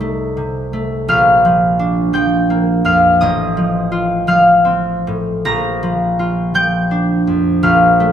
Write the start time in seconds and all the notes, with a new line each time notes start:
Already playing: C2 D#4 D#5 D#6
0.00 A3
0.37 C3
0.73 A3
1.08 A#1 F5 F6
1.45 F3
1.79 D4
2.13 F3 G5 G6
2.50 A#3
2.85 F2 F5 F6
3.21 A1 D#5 D#6
3.57 F3
3.92 F4
4.27 F3 F5 F6
4.65 C4
5.07 A2
5.45 A#1 A#5 A#6
5.83 F3
6.19 F4
6.54 F3 G5 G6
6.91 D4
7.27 F2
7.63 A#1 F5 F6
8.00 A3